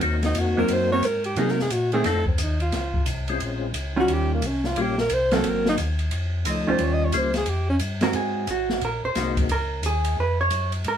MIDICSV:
0, 0, Header, 1, 6, 480
1, 0, Start_track
1, 0, Tempo, 338792
1, 16, Time_signature, 4, 2, 24, 8
1, 15549, End_track
2, 0, Start_track
2, 0, Title_t, "Alto saxophone"
2, 0, Program_c, 0, 65
2, 363, Note_on_c, 0, 63, 87
2, 552, Note_on_c, 0, 66, 80
2, 574, Note_off_c, 0, 63, 0
2, 823, Note_off_c, 0, 66, 0
2, 832, Note_on_c, 0, 70, 91
2, 1029, Note_on_c, 0, 72, 85
2, 1050, Note_off_c, 0, 70, 0
2, 1302, Note_off_c, 0, 72, 0
2, 1310, Note_on_c, 0, 73, 109
2, 1495, Note_on_c, 0, 70, 83
2, 1517, Note_off_c, 0, 73, 0
2, 1772, Note_off_c, 0, 70, 0
2, 1780, Note_on_c, 0, 67, 85
2, 1986, Note_on_c, 0, 68, 78
2, 2007, Note_off_c, 0, 67, 0
2, 2139, Note_on_c, 0, 70, 91
2, 2161, Note_off_c, 0, 68, 0
2, 2303, Note_on_c, 0, 68, 77
2, 2325, Note_off_c, 0, 70, 0
2, 2440, Note_on_c, 0, 66, 80
2, 2462, Note_off_c, 0, 68, 0
2, 2730, Note_off_c, 0, 66, 0
2, 2738, Note_on_c, 0, 68, 93
2, 2922, Note_on_c, 0, 69, 96
2, 2943, Note_off_c, 0, 68, 0
2, 3219, Note_off_c, 0, 69, 0
2, 3227, Note_on_c, 0, 60, 49
2, 3436, Note_on_c, 0, 63, 66
2, 3454, Note_off_c, 0, 60, 0
2, 3701, Note_off_c, 0, 63, 0
2, 3710, Note_on_c, 0, 65, 77
2, 4309, Note_off_c, 0, 65, 0
2, 5661, Note_on_c, 0, 66, 87
2, 5852, Note_on_c, 0, 67, 95
2, 5873, Note_off_c, 0, 66, 0
2, 6125, Note_off_c, 0, 67, 0
2, 6149, Note_on_c, 0, 58, 68
2, 6332, Note_on_c, 0, 61, 75
2, 6353, Note_off_c, 0, 58, 0
2, 6608, Note_on_c, 0, 65, 88
2, 6629, Note_off_c, 0, 61, 0
2, 6822, Note_on_c, 0, 67, 87
2, 6844, Note_off_c, 0, 65, 0
2, 7085, Note_off_c, 0, 67, 0
2, 7094, Note_on_c, 0, 70, 96
2, 7278, Note_on_c, 0, 72, 88
2, 7299, Note_off_c, 0, 70, 0
2, 7574, Note_on_c, 0, 69, 91
2, 7595, Note_off_c, 0, 72, 0
2, 7787, Note_on_c, 0, 70, 88
2, 7808, Note_off_c, 0, 69, 0
2, 8052, Note_off_c, 0, 70, 0
2, 8064, Note_on_c, 0, 63, 92
2, 8153, Note_off_c, 0, 63, 0
2, 9207, Note_on_c, 0, 75, 74
2, 9463, Note_off_c, 0, 75, 0
2, 9494, Note_on_c, 0, 72, 83
2, 9689, Note_on_c, 0, 73, 73
2, 9711, Note_off_c, 0, 72, 0
2, 9830, Note_on_c, 0, 75, 96
2, 9851, Note_off_c, 0, 73, 0
2, 9992, Note_on_c, 0, 73, 81
2, 10013, Note_off_c, 0, 75, 0
2, 10165, Note_on_c, 0, 72, 78
2, 10186, Note_off_c, 0, 73, 0
2, 10440, Note_off_c, 0, 72, 0
2, 10448, Note_on_c, 0, 68, 88
2, 10621, Note_on_c, 0, 67, 82
2, 10643, Note_off_c, 0, 68, 0
2, 10898, Note_off_c, 0, 67, 0
2, 10907, Note_on_c, 0, 61, 90
2, 11006, Note_off_c, 0, 61, 0
2, 15549, End_track
3, 0, Start_track
3, 0, Title_t, "Hollow-body jazz guitar"
3, 0, Program_c, 1, 26
3, 812, Note_on_c, 1, 54, 62
3, 825, Note_on_c, 1, 58, 59
3, 828, Note_on_c, 1, 60, 61
3, 1258, Note_off_c, 1, 54, 0
3, 1265, Note_off_c, 1, 58, 0
3, 1266, Note_off_c, 1, 60, 0
3, 1301, Note_on_c, 1, 54, 55
3, 1314, Note_on_c, 1, 58, 67
3, 1321, Note_on_c, 1, 60, 70
3, 1450, Note_off_c, 1, 54, 0
3, 1456, Note_off_c, 1, 58, 0
3, 1460, Note_off_c, 1, 60, 0
3, 1944, Note_on_c, 1, 54, 58
3, 1957, Note_on_c, 1, 58, 66
3, 1961, Note_on_c, 1, 63, 60
3, 2218, Note_off_c, 1, 54, 0
3, 2225, Note_off_c, 1, 58, 0
3, 2227, Note_off_c, 1, 63, 0
3, 2742, Note_on_c, 1, 51, 62
3, 2750, Note_on_c, 1, 57, 62
3, 2761, Note_on_c, 1, 60, 62
3, 2892, Note_off_c, 1, 51, 0
3, 2896, Note_off_c, 1, 57, 0
3, 2901, Note_off_c, 1, 60, 0
3, 5616, Note_on_c, 1, 51, 69
3, 5623, Note_on_c, 1, 55, 69
3, 5625, Note_on_c, 1, 61, 71
3, 5630, Note_on_c, 1, 65, 68
3, 6233, Note_off_c, 1, 51, 0
3, 6236, Note_off_c, 1, 55, 0
3, 6237, Note_off_c, 1, 61, 0
3, 6240, Note_off_c, 1, 65, 0
3, 7539, Note_on_c, 1, 54, 64
3, 7550, Note_on_c, 1, 58, 69
3, 7559, Note_on_c, 1, 60, 73
3, 8154, Note_off_c, 1, 54, 0
3, 8159, Note_off_c, 1, 58, 0
3, 8164, Note_off_c, 1, 60, 0
3, 9456, Note_on_c, 1, 51, 65
3, 9470, Note_on_c, 1, 61, 70
3, 9471, Note_on_c, 1, 55, 79
3, 9480, Note_on_c, 1, 65, 80
3, 10072, Note_off_c, 1, 51, 0
3, 10079, Note_off_c, 1, 55, 0
3, 10079, Note_off_c, 1, 61, 0
3, 10084, Note_off_c, 1, 65, 0
3, 11369, Note_on_c, 1, 56, 68
3, 11376, Note_on_c, 1, 60, 71
3, 11379, Note_on_c, 1, 66, 73
3, 11388, Note_on_c, 1, 70, 74
3, 11552, Note_off_c, 1, 70, 0
3, 11557, Note_on_c, 1, 68, 73
3, 11987, Note_off_c, 1, 56, 0
3, 11991, Note_off_c, 1, 60, 0
3, 11992, Note_off_c, 1, 66, 0
3, 11996, Note_off_c, 1, 68, 0
3, 12051, Note_on_c, 1, 66, 74
3, 12483, Note_off_c, 1, 66, 0
3, 12535, Note_on_c, 1, 70, 82
3, 12815, Note_off_c, 1, 70, 0
3, 12822, Note_on_c, 1, 72, 89
3, 13261, Note_off_c, 1, 72, 0
3, 13484, Note_on_c, 1, 70, 73
3, 13918, Note_off_c, 1, 70, 0
3, 13970, Note_on_c, 1, 68, 78
3, 14401, Note_off_c, 1, 68, 0
3, 14454, Note_on_c, 1, 71, 75
3, 14733, Note_off_c, 1, 71, 0
3, 14745, Note_on_c, 1, 73, 91
3, 15181, Note_off_c, 1, 73, 0
3, 15418, Note_on_c, 1, 70, 74
3, 15549, Note_off_c, 1, 70, 0
3, 15549, End_track
4, 0, Start_track
4, 0, Title_t, "Tonewheel organ"
4, 0, Program_c, 2, 16
4, 32, Note_on_c, 2, 58, 63
4, 34, Note_on_c, 2, 60, 60
4, 37, Note_on_c, 2, 66, 73
4, 41, Note_on_c, 2, 63, 61
4, 1363, Note_off_c, 2, 58, 0
4, 1364, Note_off_c, 2, 60, 0
4, 1365, Note_off_c, 2, 66, 0
4, 1367, Note_off_c, 2, 63, 0
4, 2914, Note_on_c, 2, 63, 60
4, 2915, Note_on_c, 2, 60, 58
4, 2916, Note_on_c, 2, 57, 58
4, 2919, Note_on_c, 2, 65, 72
4, 3184, Note_off_c, 2, 63, 0
4, 3185, Note_off_c, 2, 57, 0
4, 3185, Note_off_c, 2, 60, 0
4, 3186, Note_off_c, 2, 65, 0
4, 4665, Note_on_c, 2, 56, 62
4, 4671, Note_on_c, 2, 61, 61
4, 4672, Note_on_c, 2, 60, 60
4, 4673, Note_on_c, 2, 65, 65
4, 5277, Note_off_c, 2, 56, 0
4, 5280, Note_off_c, 2, 61, 0
4, 5281, Note_off_c, 2, 60, 0
4, 5281, Note_off_c, 2, 65, 0
4, 6761, Note_on_c, 2, 55, 67
4, 6765, Note_on_c, 2, 58, 62
4, 6765, Note_on_c, 2, 61, 63
4, 6773, Note_on_c, 2, 65, 77
4, 7029, Note_off_c, 2, 55, 0
4, 7031, Note_off_c, 2, 58, 0
4, 7031, Note_off_c, 2, 61, 0
4, 7035, Note_off_c, 2, 65, 0
4, 9154, Note_on_c, 2, 57, 65
4, 9157, Note_on_c, 2, 53, 70
4, 9164, Note_on_c, 2, 63, 78
4, 9629, Note_off_c, 2, 57, 0
4, 9631, Note_off_c, 2, 53, 0
4, 9634, Note_off_c, 2, 63, 0
4, 10110, Note_on_c, 2, 55, 67
4, 10112, Note_on_c, 2, 58, 59
4, 10116, Note_on_c, 2, 61, 64
4, 10117, Note_on_c, 2, 65, 75
4, 10382, Note_off_c, 2, 55, 0
4, 10383, Note_off_c, 2, 58, 0
4, 10385, Note_off_c, 2, 61, 0
4, 10386, Note_off_c, 2, 65, 0
4, 12980, Note_on_c, 2, 56, 55
4, 12986, Note_on_c, 2, 58, 44
4, 12988, Note_on_c, 2, 63, 51
4, 12989, Note_on_c, 2, 60, 49
4, 12989, Note_on_c, 2, 66, 55
4, 13459, Note_off_c, 2, 56, 0
4, 13463, Note_off_c, 2, 58, 0
4, 13464, Note_off_c, 2, 60, 0
4, 13464, Note_off_c, 2, 63, 0
4, 13464, Note_off_c, 2, 66, 0
4, 15549, End_track
5, 0, Start_track
5, 0, Title_t, "Tonewheel organ"
5, 0, Program_c, 3, 16
5, 16, Note_on_c, 3, 39, 86
5, 483, Note_off_c, 3, 39, 0
5, 501, Note_on_c, 3, 41, 89
5, 785, Note_off_c, 3, 41, 0
5, 812, Note_on_c, 3, 41, 39
5, 897, Note_off_c, 3, 41, 0
5, 974, Note_on_c, 3, 42, 80
5, 1443, Note_off_c, 3, 42, 0
5, 1455, Note_on_c, 3, 44, 93
5, 1924, Note_off_c, 3, 44, 0
5, 1938, Note_on_c, 3, 48, 88
5, 2405, Note_off_c, 3, 48, 0
5, 2419, Note_on_c, 3, 46, 82
5, 2886, Note_off_c, 3, 46, 0
5, 2896, Note_on_c, 3, 41, 78
5, 3365, Note_off_c, 3, 41, 0
5, 3383, Note_on_c, 3, 39, 90
5, 3849, Note_off_c, 3, 39, 0
5, 3857, Note_on_c, 3, 37, 81
5, 4326, Note_off_c, 3, 37, 0
5, 4339, Note_on_c, 3, 36, 88
5, 4807, Note_off_c, 3, 36, 0
5, 4815, Note_on_c, 3, 34, 80
5, 5285, Note_off_c, 3, 34, 0
5, 5306, Note_on_c, 3, 37, 89
5, 5771, Note_off_c, 3, 37, 0
5, 5776, Note_on_c, 3, 39, 82
5, 6246, Note_off_c, 3, 39, 0
5, 6262, Note_on_c, 3, 36, 81
5, 6729, Note_off_c, 3, 36, 0
5, 6742, Note_on_c, 3, 34, 82
5, 7209, Note_off_c, 3, 34, 0
5, 7229, Note_on_c, 3, 36, 92
5, 7693, Note_off_c, 3, 36, 0
5, 7716, Note_on_c, 3, 32, 90
5, 8176, Note_off_c, 3, 32, 0
5, 8195, Note_on_c, 3, 39, 89
5, 8656, Note_off_c, 3, 39, 0
5, 8668, Note_on_c, 3, 41, 78
5, 9132, Note_off_c, 3, 41, 0
5, 9140, Note_on_c, 3, 37, 92
5, 9427, Note_off_c, 3, 37, 0
5, 9458, Note_on_c, 3, 37, 42
5, 9543, Note_off_c, 3, 37, 0
5, 9627, Note_on_c, 3, 39, 91
5, 10091, Note_off_c, 3, 39, 0
5, 10099, Note_on_c, 3, 37, 88
5, 10566, Note_off_c, 3, 37, 0
5, 10582, Note_on_c, 3, 41, 85
5, 11048, Note_off_c, 3, 41, 0
5, 11053, Note_on_c, 3, 43, 95
5, 11523, Note_off_c, 3, 43, 0
5, 11535, Note_on_c, 3, 44, 80
5, 12004, Note_off_c, 3, 44, 0
5, 12018, Note_on_c, 3, 32, 82
5, 12485, Note_off_c, 3, 32, 0
5, 12495, Note_on_c, 3, 34, 84
5, 12782, Note_off_c, 3, 34, 0
5, 12799, Note_on_c, 3, 34, 40
5, 12887, Note_off_c, 3, 34, 0
5, 12970, Note_on_c, 3, 36, 87
5, 13440, Note_off_c, 3, 36, 0
5, 13444, Note_on_c, 3, 37, 82
5, 13916, Note_on_c, 3, 39, 86
5, 13917, Note_off_c, 3, 37, 0
5, 14392, Note_off_c, 3, 39, 0
5, 14406, Note_on_c, 3, 41, 81
5, 14877, Note_off_c, 3, 41, 0
5, 14886, Note_on_c, 3, 42, 94
5, 15357, Note_off_c, 3, 42, 0
5, 15370, Note_on_c, 3, 44, 87
5, 15549, Note_off_c, 3, 44, 0
5, 15549, End_track
6, 0, Start_track
6, 0, Title_t, "Drums"
6, 16, Note_on_c, 9, 51, 58
6, 158, Note_off_c, 9, 51, 0
6, 320, Note_on_c, 9, 51, 44
6, 326, Note_on_c, 9, 38, 41
6, 462, Note_off_c, 9, 51, 0
6, 467, Note_off_c, 9, 38, 0
6, 491, Note_on_c, 9, 44, 47
6, 491, Note_on_c, 9, 51, 68
6, 632, Note_off_c, 9, 44, 0
6, 632, Note_off_c, 9, 51, 0
6, 968, Note_on_c, 9, 51, 66
6, 1110, Note_off_c, 9, 51, 0
6, 1453, Note_on_c, 9, 44, 55
6, 1453, Note_on_c, 9, 51, 58
6, 1595, Note_off_c, 9, 44, 0
6, 1595, Note_off_c, 9, 51, 0
6, 1758, Note_on_c, 9, 51, 45
6, 1900, Note_off_c, 9, 51, 0
6, 1930, Note_on_c, 9, 51, 55
6, 2072, Note_off_c, 9, 51, 0
6, 2100, Note_on_c, 9, 38, 28
6, 2241, Note_off_c, 9, 38, 0
6, 2258, Note_on_c, 9, 38, 43
6, 2399, Note_off_c, 9, 38, 0
6, 2414, Note_on_c, 9, 44, 54
6, 2414, Note_on_c, 9, 51, 61
6, 2555, Note_off_c, 9, 44, 0
6, 2555, Note_off_c, 9, 51, 0
6, 2718, Note_on_c, 9, 51, 41
6, 2859, Note_off_c, 9, 51, 0
6, 2891, Note_on_c, 9, 51, 55
6, 2897, Note_on_c, 9, 38, 35
6, 3033, Note_off_c, 9, 51, 0
6, 3039, Note_off_c, 9, 38, 0
6, 3204, Note_on_c, 9, 36, 49
6, 3345, Note_off_c, 9, 36, 0
6, 3373, Note_on_c, 9, 44, 57
6, 3373, Note_on_c, 9, 51, 69
6, 3514, Note_off_c, 9, 44, 0
6, 3514, Note_off_c, 9, 51, 0
6, 3684, Note_on_c, 9, 51, 40
6, 3825, Note_off_c, 9, 51, 0
6, 3857, Note_on_c, 9, 51, 53
6, 3863, Note_on_c, 9, 38, 37
6, 3999, Note_off_c, 9, 51, 0
6, 4005, Note_off_c, 9, 38, 0
6, 4166, Note_on_c, 9, 36, 52
6, 4308, Note_off_c, 9, 36, 0
6, 4333, Note_on_c, 9, 44, 53
6, 4333, Note_on_c, 9, 51, 70
6, 4475, Note_off_c, 9, 44, 0
6, 4475, Note_off_c, 9, 51, 0
6, 4643, Note_on_c, 9, 51, 42
6, 4784, Note_off_c, 9, 51, 0
6, 4821, Note_on_c, 9, 51, 58
6, 4963, Note_off_c, 9, 51, 0
6, 5298, Note_on_c, 9, 44, 52
6, 5298, Note_on_c, 9, 51, 69
6, 5439, Note_off_c, 9, 44, 0
6, 5439, Note_off_c, 9, 51, 0
6, 5783, Note_on_c, 9, 51, 58
6, 5924, Note_off_c, 9, 51, 0
6, 6262, Note_on_c, 9, 44, 51
6, 6262, Note_on_c, 9, 51, 63
6, 6404, Note_off_c, 9, 44, 0
6, 6404, Note_off_c, 9, 51, 0
6, 6573, Note_on_c, 9, 38, 35
6, 6715, Note_off_c, 9, 38, 0
6, 6744, Note_on_c, 9, 51, 55
6, 6885, Note_off_c, 9, 51, 0
6, 7054, Note_on_c, 9, 38, 44
6, 7196, Note_off_c, 9, 38, 0
6, 7219, Note_on_c, 9, 44, 51
6, 7219, Note_on_c, 9, 51, 65
6, 7361, Note_off_c, 9, 44, 0
6, 7361, Note_off_c, 9, 51, 0
6, 7528, Note_on_c, 9, 51, 43
6, 7533, Note_on_c, 9, 38, 49
6, 7669, Note_off_c, 9, 51, 0
6, 7675, Note_off_c, 9, 38, 0
6, 7703, Note_on_c, 9, 51, 61
6, 7845, Note_off_c, 9, 51, 0
6, 8013, Note_on_c, 9, 38, 54
6, 8155, Note_off_c, 9, 38, 0
6, 8183, Note_on_c, 9, 44, 55
6, 8183, Note_on_c, 9, 51, 63
6, 8325, Note_off_c, 9, 44, 0
6, 8325, Note_off_c, 9, 51, 0
6, 8484, Note_on_c, 9, 51, 44
6, 8625, Note_off_c, 9, 51, 0
6, 8657, Note_on_c, 9, 51, 58
6, 8798, Note_off_c, 9, 51, 0
6, 9140, Note_on_c, 9, 44, 59
6, 9140, Note_on_c, 9, 51, 71
6, 9281, Note_off_c, 9, 44, 0
6, 9281, Note_off_c, 9, 51, 0
6, 9612, Note_on_c, 9, 51, 58
6, 9754, Note_off_c, 9, 51, 0
6, 10091, Note_on_c, 9, 44, 56
6, 10091, Note_on_c, 9, 51, 62
6, 10233, Note_off_c, 9, 44, 0
6, 10233, Note_off_c, 9, 51, 0
6, 10394, Note_on_c, 9, 51, 46
6, 10399, Note_on_c, 9, 38, 44
6, 10535, Note_off_c, 9, 51, 0
6, 10541, Note_off_c, 9, 38, 0
6, 10565, Note_on_c, 9, 51, 61
6, 10707, Note_off_c, 9, 51, 0
6, 11043, Note_on_c, 9, 44, 54
6, 11043, Note_on_c, 9, 51, 66
6, 11185, Note_off_c, 9, 44, 0
6, 11185, Note_off_c, 9, 51, 0
6, 11345, Note_on_c, 9, 51, 48
6, 11351, Note_on_c, 9, 38, 48
6, 11487, Note_off_c, 9, 51, 0
6, 11493, Note_off_c, 9, 38, 0
6, 11520, Note_on_c, 9, 51, 57
6, 11662, Note_off_c, 9, 51, 0
6, 12003, Note_on_c, 9, 44, 51
6, 12003, Note_on_c, 9, 51, 62
6, 12144, Note_off_c, 9, 44, 0
6, 12144, Note_off_c, 9, 51, 0
6, 12318, Note_on_c, 9, 38, 46
6, 12460, Note_off_c, 9, 38, 0
6, 12487, Note_on_c, 9, 51, 51
6, 12629, Note_off_c, 9, 51, 0
6, 12967, Note_on_c, 9, 44, 57
6, 12967, Note_on_c, 9, 51, 62
6, 12973, Note_on_c, 9, 38, 40
6, 13109, Note_off_c, 9, 44, 0
6, 13109, Note_off_c, 9, 51, 0
6, 13115, Note_off_c, 9, 38, 0
6, 13276, Note_on_c, 9, 51, 48
6, 13277, Note_on_c, 9, 36, 55
6, 13418, Note_off_c, 9, 51, 0
6, 13419, Note_off_c, 9, 36, 0
6, 13448, Note_on_c, 9, 51, 59
6, 13590, Note_off_c, 9, 51, 0
6, 13926, Note_on_c, 9, 44, 65
6, 13926, Note_on_c, 9, 51, 67
6, 14068, Note_off_c, 9, 44, 0
6, 14068, Note_off_c, 9, 51, 0
6, 14231, Note_on_c, 9, 51, 61
6, 14373, Note_off_c, 9, 51, 0
6, 14882, Note_on_c, 9, 44, 52
6, 14882, Note_on_c, 9, 51, 63
6, 15024, Note_off_c, 9, 44, 0
6, 15024, Note_off_c, 9, 51, 0
6, 15190, Note_on_c, 9, 51, 46
6, 15331, Note_off_c, 9, 51, 0
6, 15362, Note_on_c, 9, 51, 58
6, 15504, Note_off_c, 9, 51, 0
6, 15549, End_track
0, 0, End_of_file